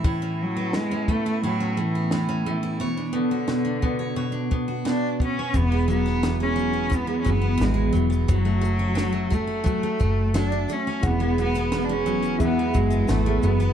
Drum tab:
SH |----------------|----------------|x-x-x-x-x-x-x-xx|x-x-x-x-x-x-x-x-|
SD |----o-------o---|----o-------o---|---oo-------o---|----o-------o---|
BD |o-----o---------|------o---o---o-|o-------o-o-----|o-----o-o-o-----|

SH |x-xxx-xxx-xxx-xx|
SD |---oo-------o---|
BD |o-------o-o-----|